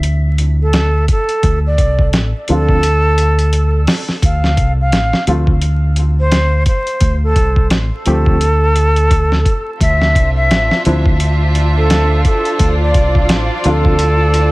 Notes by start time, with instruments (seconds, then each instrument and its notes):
Already playing: fingered electric bass D2
0.03 closed hi-hat
0.38 closed hi-hat
0.62 flute A4
0.73 snare, closed hi-hat
1.08 flute A4, kick, closed hi-hat
1.29 closed hi-hat
1.43 fingered electric bass D2, kick, closed hi-hat
1.67 flute D5
1.78 fingered electric bass C2, kick, closed hi-hat
1.99 kick
2.13 fingered electric bass A1, snare, closed hi-hat
2.48 fingered electric bass D2, felt piano F3 C4 D4 F4, flute A4, closed hi-hat
2.68 kick
2.83 closed hi-hat
3.18 closed hi-hat
3.39 closed hi-hat
3.53 closed hi-hat
3.87 snare, open hi-hat
4.09 snare
4.22 fingered electric bass D2, flute F5, kick, closed hi-hat
4.44 snare
4.57 fingered electric bass C2, kick, closed hi-hat
4.81 flute F5
4.92 fingered electric bass A1, snare, closed hi-hat
5.13 snare
5.27 fingered electric bass D2, felt piano F3 A3 C4 F4, closed hi-hat
5.47 kick
5.62 closed hi-hat
5.96 closed hi-hat
6.20 flute C5
6.31 snare, closed hi-hat
6.66 flute C5, kick, closed hi-hat
6.87 closed hi-hat
7.01 fingered electric bass D2, kick, closed hi-hat
7.24 flute A4
7.36 fingered electric bass C2, kick, closed hi-hat
7.56 kick
7.70 fingered electric bass A1, snare, closed hi-hat
8.06 fingered electric bass D2, felt piano F3 A3 C4 G4, flute A4, closed hi-hat
8.26 kick
8.41 closed hi-hat
8.76 closed hi-hat
8.96 closed hi-hat
9.11 kick, closed hi-hat
9.32 snare
9.45 kick, closed hi-hat
9.80 fingered electric bass D2, violin section D4 F4 C5 E5, synth texture F4, flute E5, kick, closed hi-hat
10.01 snare
10.15 fingered electric bass C2, kick, closed hi-hat
10.37 flute E5
10.51 fingered electric bass A1, snare, closed hi-hat
10.71 snare
10.85 fingered electric bass D2, felt piano F3 C4 D4 E4, closed hi-hat
11.06 kick
11.20 closed hi-hat
11.55 closed hi-hat
11.77 flute A4
11.90 snare, closed hi-hat
12.25 flute A4, kick, closed hi-hat
12.45 closed hi-hat
12.59 fingered electric bass D2, violin section D5, kick, closed hi-hat
12.82 flute D5
12.94 fingered electric bass C2, kick, closed hi-hat
13.15 kick
13.29 fingered electric bass A1, snare, closed hi-hat
13.64 fingered electric bass D2, felt piano F3 C4 D4 F4, flute A4, closed hi-hat
13.85 kick
13.99 closed hi-hat
14.34 closed hi-hat